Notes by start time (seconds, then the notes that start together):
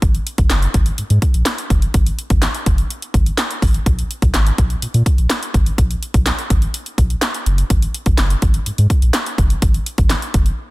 0.02 G#1, kick, closed hi-hat
0.15 closed hi-hat
0.27 closed hi-hat
0.38 G#1, kick, closed hi-hat
0.50 F#1, snare, clap, closed hi-hat
0.62 closed hi-hat
0.74 G#1, kick, closed hi-hat
0.86 closed hi-hat
0.98 G#2, closed hi-hat
1.10 G#2, closed hi-hat
1.22 kick, closed hi-hat
1.34 A#1, closed hi-hat
1.45 snare, clap, closed hi-hat
1.58 closed hi-hat
1.70 F#1, kick, closed hi-hat
1.82 closed hi-hat
1.94 G#1, kick, closed hi-hat
2.06 closed hi-hat
2.19 closed hi-hat
2.30 G#1, kick, closed hi-hat
2.42 snare, clap, closed hi-hat
2.55 closed hi-hat
2.66 F#1, kick, closed hi-hat
2.78 closed hi-hat
2.90 closed hi-hat
3.02 closed hi-hat
3.14 G#1, kick, closed hi-hat
3.26 closed hi-hat
3.38 snare, clap, closed hi-hat
3.51 closed hi-hat
3.62 G#1, kick, open hi-hat
3.74 closed hi-hat
3.86 A#1, kick, closed hi-hat
3.99 closed hi-hat
4.11 closed hi-hat
4.22 A#1, kick, closed hi-hat
4.34 G#1, snare, clap, closed hi-hat
4.47 closed hi-hat
4.58 A#1, kick, closed hi-hat
4.70 closed hi-hat
4.82 A#2, closed hi-hat
4.94 A#2, closed hi-hat
5.06 kick, closed hi-hat
5.18 A#1, closed hi-hat
5.30 snare, clap, closed hi-hat
5.43 closed hi-hat
5.54 G#1, kick, closed hi-hat
5.66 closed hi-hat
5.78 A#1, kick, closed hi-hat
5.91 closed hi-hat
6.03 closed hi-hat
6.14 A#1, kick, closed hi-hat
6.26 snare, clap, closed hi-hat
6.39 closed hi-hat
6.50 G#1, kick, closed hi-hat
6.62 closed hi-hat
6.74 closed hi-hat
6.86 closed hi-hat
6.98 A#1, kick, closed hi-hat
7.10 closed hi-hat
7.22 snare, clap, closed hi-hat
7.34 closed hi-hat
7.46 F#1, closed hi-hat
7.58 closed hi-hat
7.70 G#1, kick, closed hi-hat
7.82 closed hi-hat
7.94 closed hi-hat
8.06 G#1, kick, closed hi-hat
8.18 F#1, snare, clap, closed hi-hat
8.30 closed hi-hat
8.42 G#1, kick, closed hi-hat
8.54 closed hi-hat
8.66 G#2, closed hi-hat
8.78 G#2, closed hi-hat
8.90 kick, closed hi-hat
9.02 A#1, closed hi-hat
9.13 snare, clap, closed hi-hat
9.26 closed hi-hat
9.38 F#1, kick, closed hi-hat
9.50 closed hi-hat
9.62 G#1, kick, closed hi-hat
9.74 closed hi-hat
9.86 closed hi-hat
9.98 G#1, kick, closed hi-hat
10.10 snare, clap, closed hi-hat
10.22 closed hi-hat
10.34 F#1, kick, closed hi-hat
10.46 closed hi-hat